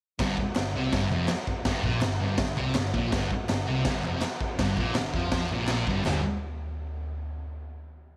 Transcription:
0.19 picked electric bass G1, distorted electric guitar G2, kick, snare, crash
0.37 muted picked electric bass stroke, muted distorted electric guitar stroke, kick
0.56 picked electric bass G1, distorted electric guitar G2, snare, clap, crash
0.73 picked electric bass C2, distorted electric guitar C3
0.93 picked electric bass G1, distorted electric guitar G2, kick, snare, crash
1.10 picked electric bass F1, distorted electric guitar F2, clap
1.28 snare, clap, crash
1.47 kick
1.65 picked electric bass G1, distorted electric guitar G2, kick, snare, crash
1.84 picked electric bass A#1, distorted electric guitar A#2, kick
2.01 picked electric bass G1, distorted electric guitar G2, snare, clap, crash
2.19 picked electric bass G1, distorted electric guitar G2
2.38 picked electric bass G1, distorted electric guitar G2, kick, snare, crash
2.57 picked electric bass C2, distorted electric guitar C3, clap
2.75 picked electric bass G1, distorted electric guitar G2, snare, clap, crash
2.93 picked electric bass A#1, distorted electric guitar A#2, kick
3.12 picked electric bass G1, distorted electric guitar G2, kick, snare, crash
3.31 muted picked electric bass stroke, muted distorted electric guitar stroke, kick
3.49 picked electric bass G1, distorted electric guitar G2, snare, clap, crash
3.67 picked electric bass C2, distorted electric guitar C3
3.85 picked electric bass G1, distorted electric guitar G2, kick, snare, crash
4.04 picked electric bass F1, distorted electric guitar F2, clap
4.21 snare, clap, crash
4.41 kick
4.59 picked electric bass G1, distorted electric guitar G2, kick, snare, crash
4.77 picked electric bass A#1, distorted electric guitar A#2, kick
4.95 picked electric bass G1, distorted electric guitar G2, snare, clap, crash
5.14 picked electric bass F2, distorted electric guitar F3, kick
5.32 kick, snare, crash
5.49 picked electric bass A#1, distorted electric guitar A#2, clap
5.67 snare, clap, crash
5.87 picked electric bass G1, distorted electric guitar G2, kick
6.05 picked electric bass G1, distorted electric guitar G2 D3 G3, snare, clap, floor tom, splash

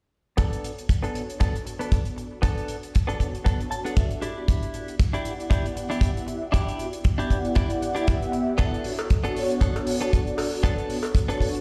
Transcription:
0.37 clean electric guitar B3 D4 A4, kick, closed hi-hat
0.53 closed hi-hat
0.63 analog synth pad B3 D4 F#4 A4 C#5, closed hi-hat
0.78 closed hi-hat
0.89 kick, closed hi-hat
1.02 clean electric guitar B3 D4 A4, analog synth pad B3 D4 F#4 A4 C#5, closed hi-hat
1.15 closed hi-hat
1.30 closed hi-hat
1.40 clean electric guitar B3 D4 A4, analog synth pad B3 D4 F#4 A4 C#5, kick, closed hi-hat
1.55 closed hi-hat
1.65 muted clean electric guitar stroke, closed hi-hat
1.79 clean electric guitar B3 D4 A4, analog synth pad B3 D4 F#4 A4 D5, closed hi-hat
1.92 kick, closed hi-hat
2.05 closed hi-hat
2.16 muted clean electric guitar stroke, closed hi-hat
2.31 analog synth pad B3 D4 F#4 A4 C#5
2.42 clean electric guitar B3 D4 A4, kick, closed hi-hat
2.58 closed hi-hat
2.68 analog synth pad B3 D4 F#4 A4 C#5, closed hi-hat
2.83 closed hi-hat
2.95 kick, closed hi-hat
3.07 clean electric guitar B3 D4 A4, analog synth pad B3 D4 F#4 A4 C#5, closed hi-hat
3.20 kick, closed hi-hat
3.35 closed hi-hat
3.44 clean electric guitar B3 D4 A4, analog synth pad B3 D4 F#4 A4 C#5, kick, closed hi-hat
3.60 closed hi-hat
3.70 clean electric guitar A5, muted clean electric guitar stroke, closed hi-hat
3.85 clean electric guitar B3 D4 A4 F#5, analog synth pad B3 D4 F#4 A4 D5, closed hi-hat
3.96 clean electric guitar E5, kick, closed hi-hat
4.11 closed hi-hat
4.21 clean electric guitar D4 E4 G4 D5, closed hi-hat
4.36 analog synth pad B3 E4 F#4 G4 D5
4.48 kick, closed hi-hat
4.63 closed hi-hat
4.73 analog synth pad B3 E4 F#4 G4 D5, closed hi-hat
4.88 closed hi-hat
5.00 kick, closed hi-hat
5.13 analog synth pad B3 E4 G4 D5 F#5, clean electric guitar D4 E4 G4, closed hi-hat
5.25 closed hi-hat
5.40 closed hi-hat
5.50 analog synth pad B3 E4 G4 D5 F#5, clean electric guitar D4 E4 G4, kick, closed hi-hat
5.66 closed hi-hat
5.76 muted clean electric guitar stroke, closed hi-hat
5.90 analog synth pad B3 E4 G4 E5 F#5, clean electric guitar D4 E4 G4, closed hi-hat
6.01 kick, closed hi-hat
6.17 closed hi-hat
6.27 muted clean electric guitar stroke, closed hi-hat
6.41 analog synth pad B3 E4 F#4 G4 D5
6.52 clean electric guitar D4 E4 G4, kick, closed hi-hat
6.68 closed hi-hat
6.78 analog synth pad B3 E4 F#4 G4 D5, closed hi-hat
6.93 closed hi-hat
7.04 kick, closed hi-hat
7.18 analog synth pad B3 E4 G4 D5 F#5, clean electric guitar D4 E4 G4, closed hi-hat
7.30 kick, closed hi-hat
7.45 closed hi-hat
7.55 analog synth pad B3 E4 G4 D5 F#5, clean electric guitar D4 E4 G4, kick, closed hi-hat
7.70 closed hi-hat
7.81 muted clean electric guitar stroke, closed hi-hat
7.95 analog synth pad B3 E4 G4 E5 F#5, clean electric guitar D4 E4 G4, closed hi-hat
8.07 kick, closed hi-hat
8.22 closed hi-hat
8.32 muted clean electric guitar stroke, closed hi-hat
8.47 analog synth pad B3 E4 F#4 G4 D5
8.58 clean electric guitar B3 D4 A4, kick, closed hi-hat
8.74 closed hi-hat
8.84 analog synth pad B3 D4 F#4 A4 C#5, open hi-hat
8.98 closed hi-hat, cowbell
9.10 kick, closed hi-hat
9.24 clean electric guitar B3 D4 A4, analog synth pad B3 D4 F#4 A4 C#5, closed hi-hat
9.36 open hi-hat
9.50 closed hi-hat
9.61 clean electric guitar B3 D4 A4, analog synth pad B3 D4 F#4 A4 C#5, kick, closed hi-hat
9.76 closed hi-hat, cowbell
9.86 muted clean electric guitar stroke, open hi-hat
10.01 clean electric guitar B3 D4 A4, analog synth pad B3 D4 F#4 A4 D5, closed hi-hat
10.13 kick, closed hi-hat
10.27 closed hi-hat
10.37 muted clean electric guitar stroke, open hi-hat, cowbell
10.52 analog synth pad B3 D4 F#4 A4 C#5
10.63 clean electric guitar B3 D4 A4, kick, closed hi-hat
10.78 closed hi-hat
10.89 analog synth pad B3 D4 F#4 A4 C#5, open hi-hat
11.03 closed hi-hat, cowbell
11.15 kick, closed hi-hat
11.28 clean electric guitar B3 D4 A4, analog synth pad B3 D4 F#4 A4 C#5, closed hi-hat
11.40 kick, open hi-hat
11.55 closed hi-hat

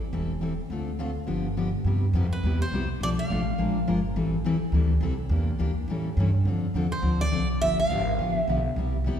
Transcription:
0.13 upright bass E1, steel-string acoustic guitar E3 G3 C4 E4 A4
0.41 steel-string acoustic guitar E3 G3 C4 E4 A4
0.70 upright bass D2, steel-string acoustic guitar D3 A3 C4 F4 A4
0.99 steel-string acoustic guitar D3 A3 C4 F4 A4
1.27 upright bass G1, steel-string acoustic guitar D3 F3 B3 D4 G4
1.57 steel-string acoustic guitar D3 F3 B3 D4 G4
1.84 upright bass G2, steel-string acoustic guitar C3 G3 B3 E4 G4
2.13 upright bass F2, steel-string acoustic guitar C3 G3 B3 E4 G4
2.33 steel-string acoustic guitar B4
2.43 upright bass E2, steel-string acoustic guitar C3 G3 B3 E4 G4
2.62 steel-string acoustic guitar C5
2.72 upright bass C2, steel-string acoustic guitar C3 G3 B3 E4 G4
3.01 upright bass B1, steel-string acoustic guitar B2 F3 A3 D4 A4 D5
3.19 steel-string acoustic guitar F5
3.30 upright bass A1, steel-string acoustic guitar B2 F3 A3 D4 A4
3.58 upright bass A#1, steel-string acoustic guitar F3 G#3 D4 F4 A#4
3.87 upright bass G1, steel-string acoustic guitar F3 G#3 D4 F4 A#4
4.16 upright bass A1, steel-string acoustic guitar E3 G3 C4 E4 A4
4.44 upright bass E2, steel-string acoustic guitar E3 G3 C4 E4 A4
4.61 muted upright bass stroke
4.72 upright bass D2, steel-string acoustic guitar E3 G3 C4 E4 A4
5.01 upright bass C2, steel-string acoustic guitar E3 G3 C4 E4 A4
5.29 upright bass E2, steel-string acoustic guitar E3 A#3 D4 G4
5.59 upright bass D2, steel-string acoustic guitar E3 A#3 D4 G4
5.76 muted upright bass stroke
5.88 upright bass A2, steel-string acoustic guitar E3 G3 C#4 E4 A4
6.17 upright bass G2, steel-string acoustic guitar E3 G3 C#4 E4 A4
6.45 upright bass F2, steel-string acoustic guitar D3 F3 C4 D4 A4
6.74 upright bass E2, steel-string acoustic guitar D3 F3 C4 D4 A4
6.92 steel-string acoustic guitar C5
7.02 upright bass D2, steel-string acoustic guitar D3 F3 C4 D4 A4
7.21 steel-string acoustic guitar D5
7.32 upright bass C2, steel-string acoustic guitar D3 F3 C4 D4 A4
7.61 upright bass G1, steel-string acoustic guitar D3 F3 B3 D4 G4 E5
7.80 steel-string acoustic guitar F5
7.89 upright bass G#1, steel-string acoustic guitar D3 F3 B3 D4 G4
8.19 upright bass A1, steel-string acoustic guitar D3 F3 B3 D4 G4
8.36 steel-string acoustic guitar E5
8.48 upright bass B1, steel-string acoustic guitar D3 F3 B3 D4 G4
8.76 upright bass C2, steel-string acoustic guitar C3 G3 B3 E4 G4
9.04 upright bass D2, steel-string acoustic guitar C3 G3 B3 E4 G4

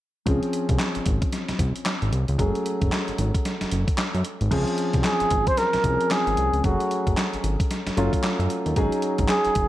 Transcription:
0.26 analog synth bass C#2, grand piano F3 C4 C#4 G#4, kick, closed hi-hat
0.43 closed hi-hat
0.53 closed hi-hat
0.69 analog synth bass C2, kick, closed hi-hat
0.79 snare, clap, closed hi-hat
0.95 analog synth bass G#1, closed hi-hat
1.06 analog synth bass G#1, kick, closed hi-hat
1.22 kick, closed hi-hat
1.33 snare, closed hi-hat
1.49 analog synth bass C2, snare, closed hi-hat
1.59 analog synth bass C2, kick, closed hi-hat
1.76 closed hi-hat
1.86 snare, clap, closed hi-hat
2.02 analog synth bass G#1, closed hi-hat
2.12 analog synth bass C2, closed hi-hat
2.28 analog synth bass C#2, closed hi-hat
2.38 analog synth bass F#1, grand piano F#3 G#3 C#4 G#4, kick, closed hi-hat
2.45 grand piano A3
2.55 closed hi-hat
2.66 closed hi-hat
2.82 analog synth bass F#1, kick, closed hi-hat
2.92 snare, clap, closed hi-hat
3.08 analog synth bass G#1, closed hi-hat
3.18 analog synth bass G#1, closed hi-hat
3.35 kick, closed hi-hat
3.45 snare, closed hi-hat
3.61 analog synth bass F#1, snare, closed hi-hat
3.71 analog synth bass F#1, closed hi-hat
3.88 kick, closed hi-hat
3.98 snare, clap, closed hi-hat
4.14 analog synth bass F#2, closed hi-hat
4.25 closed hi-hat
4.41 analog synth bass G#1, closed hi-hat
4.51 analog synth bass C#2, grand piano F3 C4 C#4 G#4, kick, closed hi-hat, crash
4.67 closed hi-hat
4.78 closed hi-hat
4.93 analog synth bass C2, kick, closed hi-hat
5.04 muted trumpet G#4, snare, clap, closed hi-hat
5.20 analog synth bass G#1, closed hi-hat
5.30 analog synth bass G#1, kick, closed hi-hat
5.47 muted trumpet C5, kick, closed hi-hat
5.57 muted trumpet A#4, snare, closed hi-hat
5.73 analog synth bass C2, snare, closed hi-hat
5.84 analog synth bass C2, grand piano F3 C4 C#4 G#4, kick, closed hi-hat
6.01 closed hi-hat
6.11 muted trumpet G#4, snare, clap, closed hi-hat
6.27 analog synth bass G#1, closed hi-hat
6.37 analog synth bass C2, closed hi-hat
6.53 analog synth bass C#2, closed hi-hat
6.63 analog synth bass F#1, grand piano F#3 A3 C#4 G#4, muted trumpet F#4, kick, closed hi-hat
6.80 closed hi-hat
6.91 closed hi-hat
7.07 analog synth bass F#1, kick, closed hi-hat
7.17 snare, clap, closed hi-hat
7.33 analog synth bass G#1, closed hi-hat
7.44 analog synth bass G#1, closed hi-hat
7.60 kick, closed hi-hat
7.71 snare, closed hi-hat
7.87 analog synth bass F#1, snare, closed hi-hat
7.97 analog synth bass F#1, grand piano F#3 A3 C#4 F4, closed hi-hat
8.13 kick, closed hi-hat
8.23 snare, clap, closed hi-hat
8.39 analog synth bass F#2, closed hi-hat
8.50 closed hi-hat
8.66 analog synth bass D#2, closed hi-hat
8.76 analog synth bass G#1, grand piano F#3 C#4 D#4 G#4, kick, closed hi-hat
8.92 closed hi-hat
9.02 closed hi-hat
9.18 analog synth bass G#1, kick, closed hi-hat
9.28 muted trumpet G#4, snare, clap, closed hi-hat
9.45 analog synth bass F#1, closed hi-hat
9.55 analog synth bass F#1, kick, closed hi-hat

